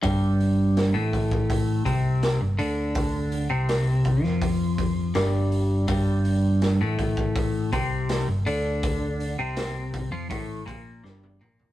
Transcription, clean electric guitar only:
X:1
M:4/4
L:1/16
Q:1/4=82
K:Gm
V:1 name="Clean electric guitar" clef=bass
G,,4- G,, A,,4- A,, C,3 G,, D,2- | D,3 C,4 F,4- F, G,,4 | G,,4- G,, A,,4- A,, C,3 G,, D,2- | D,3 C,4 F, A,,2 B,,2 G,,2 B,,2 |]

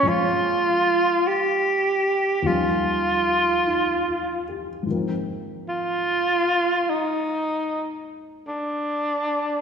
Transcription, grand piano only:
X:1
M:4/4
L:1/8
Q:"Swing" 1/4=50
K:Ablyd
V:1 name="Grand piano"
z6 (3E F G | z8 |]
V:2 name="Grand piano" clef=bass
[B,,F,A,C_D]4 [E,,E,F,G,D]4 | [A,,E,F,B,C]8 |]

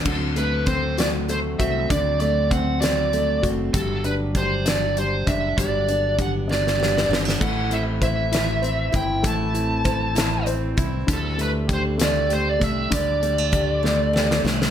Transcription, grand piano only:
X:1
M:6/8
L:1/8
Q:3/8=65
K:Dmix
V:1 name="Grand piano"
D, A, C F A, F | D, A, C F A, F | G, D G, D G, D | G, D G, D G, D |
A, E c E c E | A, E c E c E | D, A, G A, G A, | D, A, G A, G A, |]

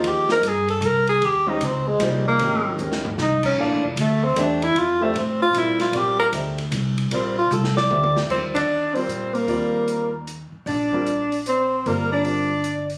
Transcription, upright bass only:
X:1
M:3/4
L:1/8
Q:"Swing" 1/4=152
K:Bbdor
V:1 name="Upright bass" clef=bass
E,,2 G,,2 C,,2 | E,,2 D,,2 C,,2 | A,,,2 E,,2 C,,2 | (3B,,, =A,,, F,,, =D,,2 _F,,2 |
F,,2 =A,,2 B,,2 | B,,,2 =D,,2 C,,2 | B,,,2 C,,2 =D,,2 | [K:Eb] E,,4 B,,2 |
E,,4- E,, z | B,,,6 | G,,,6 |]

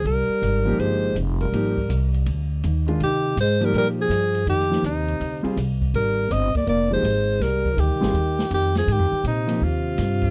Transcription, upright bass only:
X:1
M:4/4
L:1/8
Q:"Swing" 1/4=163
K:Fdor
V:1 name="Upright bass" clef=bass
C,, z A,,,2 G,,,2 F,,,2 | A,,,2 C,,2 D,,2 E,,2 | C,2 A,,2 B,,2 G,,2 | F,,2 E,,2 D,, z C,,2 |
A,,,2 G,,, z F,,,2 A,,,2 | C,,2 (3D,, C,, A,,, E,,2 F,,2 | (3A,, F,, E,, B,,2 E,,2 G,,2 |]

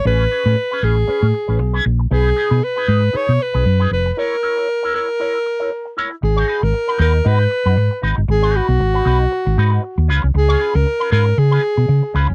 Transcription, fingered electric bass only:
X:1
M:4/4
L:1/16
Q:"Swing 16ths" 1/4=117
K:G#m
V:1 name="Fingered electric bass" clef=bass
=A,,,2 z =A,, z2 A,,,2 z A,, z A,,, B,,,2 ^A,,,2 | B,,,2 z B,, z2 G,,2 z B,, z B,,, F,,2 ^E,,,2 | z16 | G,,,2 z G,,, z2 D,,2 G,,2 z F,, G,, z G,,, =G,,, |
G,,,3 B,,, G,,,2 B,,,2 z G,,, G,,2 z D,, C,, ^B,,, | C,,2 z C,, z2 G,,2 C,2 z B,, C, z C,, ^E,,, |]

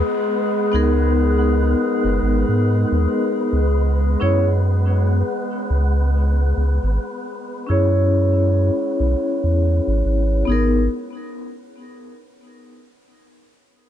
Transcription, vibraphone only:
X:1
M:4/4
L:1/16
Q:"Swing 16ths" 1/4=69
K:G#m
V:1 name="Vibraphone"
z3 [B,DGA]12- [B,DGA] | z3 [CEGc] z12 | z3 [CEGc]12- [CEGc] | [B,DGA]2 z12 z2 |]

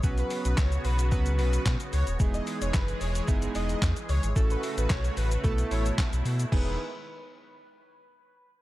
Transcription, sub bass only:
X:1
M:4/4
L:1/16
Q:1/4=111
K:E
V:1 name="Sub bass" clef=bass
B,,,2 z B,,, C,,2 B,,,2 C,,2 B,,,2 B,, z C,, D,,, | E,,,2 z E,,, F,,,2 E,,,2 F,,,2 E,,,2 E,, z C,, G,,, | A,,,2 z A,,, B,,,2 A,,,2 B,,,2 A,,,2 B,,, B,,, B,,2 | E,,,2 z12 z2 |]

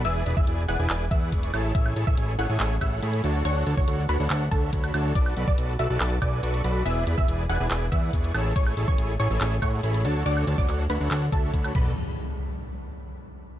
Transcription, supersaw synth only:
X:1
M:4/4
L:1/16
Q:1/4=141
K:Dlyd
V:1 name="Supersaw synth"
[EGBdg]2 [EGBdb] [EGBdg] [EGBdg] z [EGBdg] [EGBdg] [EGBdg] z [EGBdf]2 [EGBdc']2 [EGAca]2 | c2 [EGAca] c [EGAcg] z [EGAcg] [EGAcg] [EGAcg] z [EGAcf]2 [EGAcb]2 [DFAca]2 | [DFAcf]2 [DFAca] [DFAcf] [DFAcf] z [DFAcf] [DFAcf] [DFAcf] z [DFAce]2 [DFAcb]2 [DFAca]2 | [FABa]2 [FABdb] [FBda] [FABda] z [FABda] [FABda] [FABda] z [FABdg]2 [FABdc']2 [FABdb]2 |
[EGBdg]2 [EGBdb] [Gdg] [EGBdg] z [EGBdg] [EGBdg] [EGBdg] z [GBdf]2 [EGBdc']2 [EGAca]2 | c2 [EGAca] c [EGAcg] z [EGAcg] [EGAcg] [EGAcg] z [EGAcf]2 [EGAcb]2 [DFAca]2 | [DFAcf]2 [DFAca] [DFf] [DFAcf] z [DFAcf] [DFAcf] [DFAcf] z [DFAce]2 [DFAcb]2 [FABda]2 | z16 |]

